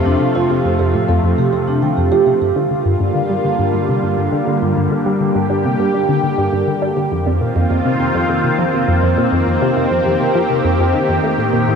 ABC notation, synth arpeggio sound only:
X:1
M:4/4
L:1/16
Q:1/4=102
K:Gm
V:1 name="Synth arpeggio sound" clef=bass
F,, C, F, C, F,, F,, A,, F,, F,, C, F, C, E, F,, F, C, | G,, D, D, G,, G,, D, G, D, G,, G,, C, G,, G,, D, D, G,, | G,, D, G, D, G,, G,, C, G,, G,, D, D, G,, G,, D, G, D, | F,, F,, B,, F,, F,, C, C, F,, F,, C, F, C, F,, F,, B,, F,, |
F,, C, C, F,, F,, C, F, C, F,, F,, E, F,, A, A,, B,, A,, |]